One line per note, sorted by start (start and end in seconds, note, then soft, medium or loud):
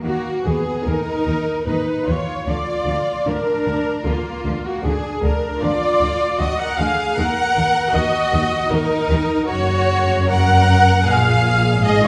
0.04 0.13 D#2 medium
0.04 0.12 D#3 medium
0.04 0.43 A#3 medium
0.04 0.43 F#4 loud
0.04 0.43 F#4 medium
0.44 0.53 D#2 medium
0.44 0.53 D#3 medium
0.44 0.87 B3 medium
0.44 0.86 G#4 medium
0.44 0.86 G#4 loud
0.86 0.94 D#2 medium
0.86 0.95 D#3 medium
0.86 1.66 D#4 loud
0.86 1.67 A#4 medium
0.86 1.67 A#4 loud
1.26 1.34 D#2 medium
1.26 1.35 D#3 medium
1.66 1.74 D#2 medium
1.66 1.76 D#3 medium
1.66 2.06 D#4 medium
1.66 2.07 B4 medium
1.66 2.06 B4 medium
2.06 2.14 D#2 medium
2.06 2.15 D#3 medium
2.06 2.46 F4 medium
2.06 2.47 C#5 loud
2.06 2.47 C#5 medium
2.47 2.55 D2 medium
2.47 2.56 D3 medium
2.47 3.25 F4 medium
2.47 3.26 D5 medium
2.47 3.27 D5 loud
2.86 2.94 D2 medium
2.86 2.95 D3 medium
3.26 3.34 D2 medium
3.26 3.36 D3 medium
3.26 4.06 D4 loud
3.26 4.05 A#4 loud
3.26 4.06 A#4 medium
3.66 3.74 D2 medium
3.66 3.75 D3 medium
4.05 4.14 D2 medium
4.05 4.15 D3 medium
4.05 4.64 A#3 medium
4.05 4.65 F4 medium
4.44 4.52 D2 medium
4.44 4.54 D3 medium
4.65 4.84 A#3 medium
4.65 4.84 F#4 medium
4.65 4.84 F#4 loud
4.83 4.91 D2 medium
4.83 4.93 D3 medium
4.83 5.22 D4 medium
4.83 5.22 G#4 loud
4.83 5.24 G#4 medium
5.23 5.31 D2 medium
5.23 5.31 D3 medium
5.23 5.61 D4 medium
5.23 5.62 A#4 loud
5.23 5.62 A#4 medium
5.61 5.70 D2 medium
5.61 5.71 D3 medium
5.61 6.39 F4 loud
5.61 6.38 D5 loud
5.61 6.39 D5 loud
6.00 6.08 D2 medium
6.00 6.09 D3 medium
6.39 6.47 D2 medium
6.39 6.47 D3 medium
6.39 6.59 F#4 medium
6.39 6.59 D#5 loud
6.39 6.58 D#5 loud
6.59 6.79 A#4 loud
6.59 6.78 F#5 loud
6.77 6.86 D2 medium
6.77 6.87 D3 medium
6.77 7.18 G#4 loud
6.77 7.17 F5 loud
6.77 7.16 F5 loud
7.16 7.26 D#2 medium
7.16 7.25 D#3 medium
7.16 7.94 A#4 loud
7.16 7.92 F#5 loud
7.16 7.94 F#5 loud
7.56 7.64 D#2 medium
7.56 7.65 D#3 medium
7.94 8.02 D#2 medium
7.94 8.02 D#3 medium
7.94 8.71 F#4 loud
7.94 8.71 D#5 loud
8.32 8.41 D#2 loud
8.32 8.40 D#3 medium
8.70 8.78 D#2 medium
8.70 8.78 D#3 medium
8.70 9.48 D#4 loud
8.70 9.48 A#4 loud
8.70 9.49 A#4 loud
9.09 9.17 D#2 medium
9.09 9.17 D#3 medium
9.48 11.03 F#1 medium
9.48 11.03 F#2 loud
9.48 10.28 F#4 loud
9.48 10.28 C#5 loud
9.48 10.30 C#5 loud
10.30 11.05 A#4 loud
10.30 11.06 F#5 loud
11.07 11.82 A#1 medium
11.07 11.83 A#2 medium
11.07 11.82 G#4 loud
11.07 11.84 F5 loud
11.07 11.85 F5 loud
11.84 12.08 G#1 medium
11.84 12.08 G#2 loud
11.84 12.03 G#4 loud
11.84 12.03 D#5 loud
11.84 12.04 D#5 loud
12.04 12.08 F4 loud
12.04 12.08 C#5 loud